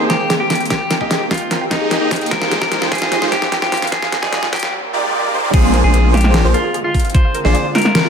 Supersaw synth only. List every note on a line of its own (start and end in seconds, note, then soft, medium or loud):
0.00 0.11 A#3 medium
0.00 0.11 D#4 medium
0.00 0.11 G4 medium
0.00 0.11 G#4 medium
0.00 0.11 C5 loud
1.01 1.12 A#3 loud
1.01 1.12 D#4 medium
1.01 1.12 G4 medium
1.01 1.12 G#4 medium
1.01 1.12 D#5 loud
1.71 2.09 A#3 medium
1.71 2.09 D#4 medium
1.71 2.09 G4 medium
1.71 2.09 G#4 medium
1.71 2.09 D#5 loud
2.11 2.19 A#3 medium
2.11 2.19 D#4 medium
2.11 2.19 G4 medium
2.11 2.19 G#4 medium
2.11 2.19 C5 medium
2.21 2.29 A#3 medium
2.21 2.29 D#4 medium
2.21 2.29 G4 medium
2.21 2.29 G#4 medium
2.21 2.29 D#5 medium
2.31 2.59 G#3 loud
2.31 2.59 D#4 medium
2.31 2.59 F4 medium
2.31 2.59 G4 medium
2.31 2.59 C5 loud
2.62 3.20 G#3 medium
2.62 3.20 D#4 medium
2.62 3.20 F4 medium
2.62 3.20 G4 medium
2.62 3.20 C5 medium
3.22 3.34 G#3 medium
3.22 3.34 D#4 medium
3.22 3.34 F4 medium
3.22 3.34 G4 medium
3.22 3.34 C5 loud
4.23 4.34 G#3 loud
4.23 4.34 D#4 medium
4.23 4.34 F4 medium
4.23 4.34 G4 medium
4.23 4.34 D5 loud
4.93 5.31 G#3 medium
4.93 5.31 D#4 medium
4.93 5.31 F4 medium
4.93 5.31 G4 medium
4.93 5.31 D5 loud
5.33 5.41 G#3 medium
5.33 5.41 D#4 medium
5.33 5.41 F4 medium
5.33 5.41 G4 medium
5.33 5.41 C5 medium
5.44 5.51 G#3 medium
5.44 5.51 D#4 medium
5.44 5.51 F4 medium
5.44 5.51 G4 medium
5.44 5.51 D5 loud
5.54 5.82 A#3 medium
5.54 5.82 D4 medium
5.54 5.82 F4 medium
5.54 5.82 G#4 medium
5.54 5.82 C5 loud
5.84 6.42 A#3 medium
5.84 6.42 D4 medium
5.84 6.42 F4 medium
5.84 6.42 G#4 medium
5.84 6.42 C5 medium
6.44 6.56 A#3 medium
6.44 6.56 D4 medium
6.44 6.56 F4 medium
6.44 6.56 G#4 medium
6.44 6.56 C5 loud
7.45 7.56 A#3 loud
7.45 7.56 D4 medium
7.45 7.56 F4 medium
7.45 7.56 G#4 medium
7.45 7.56 D5 loud